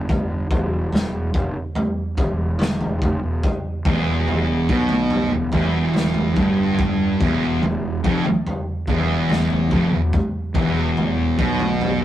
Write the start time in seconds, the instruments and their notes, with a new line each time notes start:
Already playing: fingered electric bass G1
0.09 kick, floor tom
0.51 fingered electric bass E1, kick, floor tom
0.93 fingered electric bass E1, snare, floor tom
1.34 fingered electric bass F1, kick
1.75 floor tom
2.17 fingered electric bass E1, kick, floor tom
2.59 snare, mid tom
2.81 floor tom
3.02 fingered electric bass F1, kick, mid tom
3.23 fingered electric bass E1
3.43 kick, floor tom
3.85 fingered electric bass E1, distorted electric guitar E2, kick, floor tom
4.27 floor tom
4.69 fingered electric bass B1, distorted electric guitar B2, kick
4.89 mid tom
5.10 floor tom
5.31 fingered electric bass E1, distorted electric guitar E2
5.52 fingered electric bass E1, distorted electric guitar E2, kick, floor tom
5.94 snare, mid tom
6.14 floor tom
6.36 fingered electric bass G1, distorted electric guitar G2, kick, mid tom
6.79 kick, floor tom
7.20 fingered electric bass E1, distorted electric guitar E2, kick, floor tom
7.61 fingered electric bass E1, distorted electric guitar E2, floor tom
8.04 fingered electric bass F1, distorted electric guitar F2, kick
8.25 mid tom
8.47 floor tom
8.87 fingered electric bass E1, distorted electric guitar E2, kick, floor tom
9.30 snare, mid tom
9.50 floor tom
9.71 fingered electric bass F1, distorted electric guitar F2, kick, mid tom
9.92 fingered electric bass E1, distorted electric guitar E2
10.13 kick, floor tom
10.55 fingered electric bass E1, distorted electric guitar E2, kick, floor tom
10.97 floor tom
11.39 fingered electric bass B1, distorted electric guitar B2, kick
11.60 mid tom
11.81 floor tom
12.01 fingered electric bass E1, distorted electric guitar E2